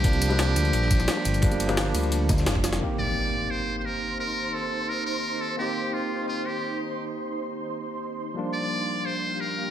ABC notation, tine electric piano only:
X:1
M:4/4
L:1/16
Q:1/4=173
K:Cdor
V:1 name="Tine electric piano"
[F,G,B,D]3 [F,G,B,D]12- [F,G,B,D] | [F,G,B,D]3 [F,G,B,D]12- [F,G,B,D] | [B,CEG]16- | [B,CEG]16 |
[B,CEG]16- | [B,CEG]16 | [F,G,B,D]16 |]